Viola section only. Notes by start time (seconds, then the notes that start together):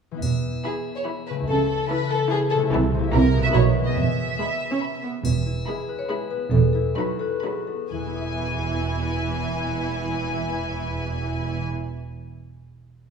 0.64 E3 E4
1.06 E3 E4
1.89 E3 E4
2.31 E3 E4
2.72 E3 E4
3.13 E3 E4
3.54 F#3 D#4
4.39 G#3
4.71 C#4
5.04 B3
5.67 G#3
6.10 G#3
6.97 F#3
7.44 F#3
7.92 E3